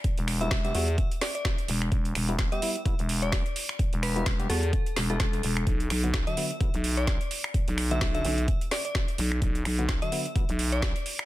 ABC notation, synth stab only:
X:1
M:4/4
L:1/16
Q:"Swing 16ths" 1/4=128
K:Em
V:1 name="Synth stab"
z3 [G,B,E] z [G,B,G] [G,B,F] z8 z | z3 [G,B,E] z [G,B,G] [G,B,E] z [G,B,E] z6 z | z3 [G,B,E] z [G,B,G] [G,B,F] z4 [G,B,E] z4 | z3 [D,F,B,] z [D,F,D] [D,F,B,] z [D,F,B,] z6 z |
z3 [D,F,B,] z [D,F,D] [D,F,^C] z8 z | z3 [D,F,B,] z [D,F,D] [D,F,B,] z [D,F,B,] z6 z |]